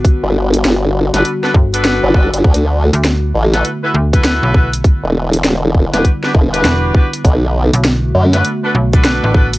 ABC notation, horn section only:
X:1
M:4/4
L:1/16
Q:"Swing 16ths" 1/4=100
K:Bm
V:1 name="Horn section"
z6 z [DFAB] z [DFAB] z [DFAB]3 [DFAB] z | z6 z [EFAB] z [EFAB] z [EFAB]3 [EFAB] z | z6 z [DFGB] z [DFGB] z [DFGB]3 [DFGB] z | z6 z [DFAB] z [DFAB] z [DFAB]3 [DFAB] z |]